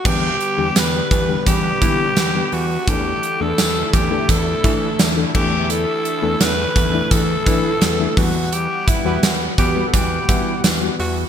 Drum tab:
CC |x-------|-------x|--------|--------|
HH |-xxxxxxo|xxxxxxx-|xxxxxxxo|xxxxxxxo|
TB |--x---x-|--x---x-|--x---x-|--x---x-|
SD |--o---o-|--o---o-|--o---o-|--o---o-|
BD |o--ooo--|o--ooo-o|---ooo-o|-o-ooo--|